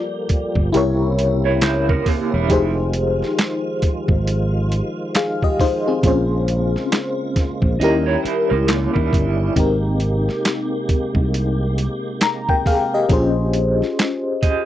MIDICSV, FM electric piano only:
0, 0, Header, 1, 2, 480
1, 0, Start_track
1, 0, Key_signature, -4, "major"
1, 0, Tempo, 882353
1, 1363, Time_signature, 4, 2, 24, 8
1, 7972, End_track
2, 0, Start_track
2, 0, Title_t, "FM electric piano"
2, 0, Program_c, 0, 5
2, 0, Control_c, 0, 64, 127
2, 0, Note_on_c, 0, 65, 69
2, 0, Note_on_c, 0, 69, 64
2, 0, Note_on_c, 0, 70, 64
2, 0, Note_on_c, 0, 74, 75
2, 381, Note_off_c, 0, 65, 0
2, 385, Note_off_c, 0, 69, 0
2, 389, Note_off_c, 0, 70, 0
2, 393, Note_off_c, 0, 74, 0
2, 395, Note_on_c, 0, 64, 87
2, 403, Note_on_c, 0, 67, 80
2, 410, Note_on_c, 0, 70, 71
2, 412, Control_c, 0, 64, 0
2, 419, Note_on_c, 0, 73, 89
2, 492, Control_c, 0, 64, 127
2, 1340, Note_off_c, 0, 64, 0
2, 1344, Note_off_c, 0, 67, 0
2, 1348, Note_off_c, 0, 70, 0
2, 1350, Note_on_c, 0, 63, 64
2, 1352, Note_off_c, 0, 73, 0
2, 1357, Note_on_c, 0, 67, 68
2, 1366, Note_on_c, 0, 68, 71
2, 1370, Control_c, 0, 64, 0
2, 1374, Note_on_c, 0, 72, 81
2, 1454, Control_c, 0, 64, 127
2, 2775, Note_off_c, 0, 63, 0
2, 2779, Note_off_c, 0, 67, 0
2, 2783, Note_off_c, 0, 68, 0
2, 2787, Note_off_c, 0, 72, 0
2, 2808, Note_on_c, 0, 77, 69
2, 2811, Note_on_c, 0, 68, 56
2, 2945, Note_off_c, 0, 77, 0
2, 2947, Note_off_c, 0, 68, 0
2, 2958, Note_on_c, 0, 75, 65
2, 2961, Note_on_c, 0, 67, 57
2, 3043, Note_off_c, 0, 75, 0
2, 3044, Note_off_c, 0, 67, 0
2, 3049, Note_on_c, 0, 72, 80
2, 3051, Note_on_c, 0, 63, 59
2, 3186, Note_off_c, 0, 72, 0
2, 3187, Note_off_c, 0, 63, 0
2, 3197, Note_on_c, 0, 68, 64
2, 3199, Note_on_c, 0, 60, 55
2, 3282, Note_on_c, 0, 61, 68
2, 3290, Note_off_c, 0, 68, 0
2, 3290, Control_c, 0, 64, 0
2, 3290, Note_on_c, 0, 65, 64
2, 3297, Note_on_c, 0, 68, 67
2, 3305, Note_on_c, 0, 72, 76
2, 3392, Control_c, 0, 64, 127
2, 3423, Note_off_c, 0, 60, 0
2, 4224, Note_off_c, 0, 61, 0
2, 4227, Note_off_c, 0, 65, 0
2, 4231, Note_off_c, 0, 68, 0
2, 4235, Note_off_c, 0, 72, 0
2, 4242, Note_on_c, 0, 61, 71
2, 4251, Control_c, 0, 64, 0
2, 4251, Note_on_c, 0, 64, 74
2, 4259, Note_on_c, 0, 67, 73
2, 4266, Note_on_c, 0, 70, 91
2, 4338, Control_c, 0, 64, 127
2, 5183, Note_off_c, 0, 61, 0
2, 5188, Note_off_c, 0, 64, 0
2, 5192, Note_off_c, 0, 67, 0
2, 5196, Note_off_c, 0, 70, 0
2, 5200, Note_on_c, 0, 60, 67
2, 5207, Note_on_c, 0, 63, 64
2, 5210, Control_c, 0, 64, 0
2, 5214, Note_on_c, 0, 67, 63
2, 5221, Note_on_c, 0, 70, 68
2, 5300, Control_c, 0, 64, 127
2, 6627, Note_off_c, 0, 67, 0
2, 6631, Note_off_c, 0, 70, 0
2, 6652, Note_on_c, 0, 82, 66
2, 6787, Note_off_c, 0, 82, 0
2, 6797, Note_on_c, 0, 79, 70
2, 6801, Note_on_c, 0, 70, 55
2, 6882, Note_off_c, 0, 79, 0
2, 6884, Note_off_c, 0, 70, 0
2, 6893, Note_on_c, 0, 77, 73
2, 6896, Note_on_c, 0, 68, 60
2, 7028, Note_off_c, 0, 77, 0
2, 7030, Note_off_c, 0, 68, 0
2, 7041, Note_on_c, 0, 75, 69
2, 7044, Note_on_c, 0, 67, 61
2, 7100, Note_off_c, 0, 60, 0
2, 7104, Note_off_c, 0, 63, 0
2, 7119, Note_on_c, 0, 61, 75
2, 7127, Note_on_c, 0, 65, 62
2, 7130, Control_c, 0, 64, 0
2, 7134, Note_on_c, 0, 68, 62
2, 7144, Note_on_c, 0, 72, 83
2, 7237, Control_c, 0, 64, 127
2, 7264, Note_off_c, 0, 75, 0
2, 7265, Note_off_c, 0, 67, 0
2, 7972, Note_off_c, 0, 61, 0
2, 7972, Note_off_c, 0, 65, 0
2, 7972, Note_off_c, 0, 68, 0
2, 7972, Note_off_c, 0, 72, 0
2, 7972, End_track
0, 0, End_of_file